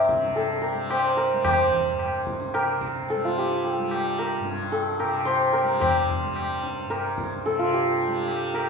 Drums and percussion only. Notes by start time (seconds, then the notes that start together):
0.09 tabla ke
0.23 tabla te
0.37 tabla tin
0.64 tabla na
0.91 tabla na
1.17 tabla na
1.45 tabla na, tabla ge
1.72 tabla ge
1.99 tabla na
2.27 tabla ke
2.40 tabla te
2.54 tabla na
2.81 tabla ke
3.09 tabla te
3.37 tabla te
3.64 tabla tin
3.91 tabla na
4.18 tabla na
4.45 tabla te
4.73 tabla tin
5.00 tabla na
5.27 tabla na
5.55 tabla na
5.81 tabla na, tabla ge
6.09 tabla ge
6.36 tabla na
6.63 tabla te
6.91 tabla na
7.18 tabla ke
7.46 tabla te
7.73 tabla te
8.00 tabla tin
8.28 tabla na
8.55 tabla na